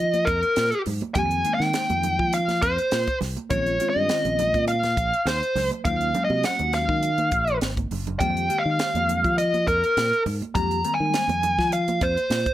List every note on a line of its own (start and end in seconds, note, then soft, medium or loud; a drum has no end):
0.00 0.25 F3 medium
0.00 0.28 D#5 medium
0.14 closed hi-hat soft
0.14 high conga medium
0.25 0.42 F2 medium
0.25 0.81 A#4 medium
0.25 kick medium
0.25 closed hi-hat medium
0.43 closed hi-hat soft
0.56 0.72 A#2 medium
0.56 snare medium
0.56 closed hi-hat medium
0.72 closed hi-hat soft
0.86 1.01 G#2 medium
0.86 open hi-hat medium
0.86 low conga medium
1.01 closed hi-hat soft
1.01 high conga medium
1.15 1.43 F2 medium
1.15 1.39 D#3 medium
1.15 1.39 G#3 medium
1.15 1.39 A#3 medium
1.15 1.40 C4 medium
1.15 1.40 G4 medium
1.15 1.51 G#5 medium
1.15 kick medium
1.15 closed hi-hat medium
1.15 low conga medium
1.31 closed hi-hat soft
1.44 2.38 D#3 medium
1.44 2.39 G#3 medium
1.44 2.39 A#3 medium
1.44 2.39 C4 medium
1.44 2.39 D#4 medium
1.44 closed hi-hat medium
1.54 2.35 G5 medium
1.60 1.73 D#3 medium
1.60 snare soft
1.73 snare loud
1.73 closed hi-hat medium
1.90 2.17 F2 medium
1.90 closed hi-hat soft
1.90 high conga medium
2.03 closed hi-hat medium
2.03 low conga medium
2.19 2.59 F3 medium
2.19 kick medium
2.33 2.61 F5 medium
2.33 closed hi-hat medium
2.48 snare soft
2.48 closed hi-hat soft
2.48 high conga medium
2.62 2.77 F2 medium
2.62 3.17 C5 medium
2.62 kick medium
2.62 closed hi-hat medium
2.78 closed hi-hat soft
2.91 3.07 A#2 medium
2.91 snare loud
2.91 closed hi-hat medium
3.07 kick medium
3.07 closed hi-hat soft
3.21 3.36 C2 medium
3.21 snare soft
3.21 open hi-hat medium
3.21 low conga medium
3.36 closed hi-hat soft
3.36 high conga medium
3.50 3.78 A#1 medium
3.50 3.74 D#3 medium
3.50 3.74 G#3 medium
3.50 3.74 C4 medium
3.50 3.74 C#4 medium
3.50 3.74 F4 medium
3.50 3.89 C#5 medium
3.50 kick medium
3.50 closed hi-hat medium
3.50 low conga medium
3.66 closed hi-hat soft
3.79 4.73 D#3 medium
3.79 4.73 G#3 medium
3.79 4.74 C4 medium
3.79 4.74 C#4 medium
3.79 4.74 F4 medium
3.79 closed hi-hat medium
3.90 4.64 D#5 medium
3.96 4.09 G2 medium
4.09 snare medium
4.09 closed hi-hat medium
4.25 4.53 A#1 medium
4.25 closed hi-hat soft
4.25 high conga medium
4.39 closed hi-hat medium
4.39 low conga medium
4.54 4.95 A#2 medium
4.54 kick medium
4.54 closed hi-hat soft
4.68 5.28 F5 medium
4.68 closed hi-hat medium
4.83 snare soft
4.83 closed hi-hat soft
4.83 high conga medium
4.97 5.12 A#1 medium
4.97 kick medium
4.97 closed hi-hat medium
5.14 closed hi-hat soft
5.25 5.41 D#2 medium
5.25 5.69 C5 medium
5.25 snare medium
5.25 closed hi-hat medium
5.43 closed hi-hat soft
5.55 5.70 C#2 medium
5.55 snare soft
5.55 open hi-hat medium
5.55 low conga medium
5.71 closed hi-hat soft
5.71 high conga medium
5.84 6.13 D#2 medium
5.84 6.09 F#3 medium
5.84 6.09 G#3 medium
5.84 6.09 A#3 medium
5.84 6.09 C#4 medium
5.84 6.10 F4 medium
5.84 6.24 F5 medium
5.84 kick loud
5.84 closed hi-hat medium
5.84 low conga medium
6.01 closed hi-hat soft
6.14 7.09 F#3 medium
6.14 7.09 G#3 medium
6.14 7.09 A#3 medium
6.14 7.09 C#4 medium
6.14 7.09 F#4 medium
6.14 closed hi-hat soft
6.14 low conga medium
6.24 6.43 D#5 medium
6.30 6.43 C3 medium
6.30 high conga medium
6.44 6.72 F#5 medium
6.44 snare loud
6.44 closed hi-hat medium
6.59 6.87 D#2 medium
6.59 closed hi-hat soft
6.59 high conga medium
6.73 7.58 F5 medium
6.73 snare soft
6.73 closed hi-hat medium
6.89 7.29 D#3 medium
6.89 kick medium
7.03 closed hi-hat medium
7.18 closed hi-hat soft
7.18 high conga medium
7.32 7.59 A#1 medium
7.32 kick medium
7.32 closed hi-hat medium
7.47 closed hi-hat soft
7.61 7.88 G#1 medium
7.61 snare medium
7.61 closed hi-hat medium
7.61 high conga soft
7.77 kick medium
7.77 closed hi-hat soft
7.77 high conga medium
7.91 8.17 F#1 medium
7.91 open hi-hat medium
7.91 low conga medium
8.07 closed hi-hat soft
8.07 low conga medium
8.19 8.48 F2 medium
8.19 8.44 D#3 medium
8.19 8.44 G#3 medium
8.19 8.45 A#3 medium
8.19 8.44 C4 medium
8.19 8.45 G4 medium
8.19 8.60 G5 medium
8.19 kick medium
8.19 closed hi-hat medium
8.19 low conga medium
8.37 closed hi-hat soft
8.48 9.43 D#3 medium
8.48 9.43 G#3 medium
8.48 9.43 A#3 medium
8.48 9.43 C4 medium
8.48 9.43 G4 medium
8.48 closed hi-hat medium
8.59 9.38 F5 medium
8.66 8.78 D#3 medium
8.79 snare loud
8.79 closed hi-hat medium
8.95 9.22 F2 medium
8.95 closed hi-hat soft
8.95 high conga medium
9.09 closed hi-hat medium
9.09 low conga medium
9.24 9.65 F3 medium
9.24 kick medium
9.24 closed hi-hat soft
9.38 9.65 D#5 medium
9.38 closed hi-hat medium
9.54 closed hi-hat soft
9.54 high conga medium
9.67 9.82 F2 medium
9.67 10.22 A#4 medium
9.67 kick medium
9.67 closed hi-hat medium
9.84 closed hi-hat soft
9.97 10.11 A#2 medium
9.97 snare medium
9.97 closed hi-hat medium
10.13 closed hi-hat soft
10.26 10.40 G#2 medium
10.26 open hi-hat medium
10.26 low conga medium
10.42 closed hi-hat soft
10.42 high conga medium
10.54 10.82 F2 medium
10.54 10.78 D#3 medium
10.54 10.78 G#3 medium
10.54 10.78 A#3 medium
10.54 10.79 C4 medium
10.54 10.79 G4 medium
10.54 10.95 A#5 medium
10.54 kick medium
10.54 closed hi-hat medium
10.54 low conga medium
10.71 closed hi-hat soft
10.84 11.78 D#3 medium
10.84 11.78 G3 medium
10.84 11.78 G#3 medium
10.84 11.78 A#3 medium
10.84 11.78 C4 medium
10.84 closed hi-hat medium
10.94 11.73 G#5 medium
11.00 11.13 D#3 medium
11.14 snare loud
11.14 closed hi-hat medium
11.28 11.56 F2 medium
11.28 closed hi-hat soft
11.28 high conga medium
11.43 closed hi-hat medium
11.43 low conga medium
11.58 11.99 F3 medium
11.58 kick medium
11.58 snare soft
11.72 12.03 F5 medium
11.72 closed hi-hat medium
11.88 closed hi-hat soft
11.88 high conga medium
12.01 12.16 F2 medium
12.01 12.54 C5 medium
12.01 kick medium
12.01 closed hi-hat medium
12.17 closed hi-hat soft
12.30 12.45 A#2 medium
12.30 snare medium
12.30 closed hi-hat medium
12.46 kick medium
12.46 closed hi-hat soft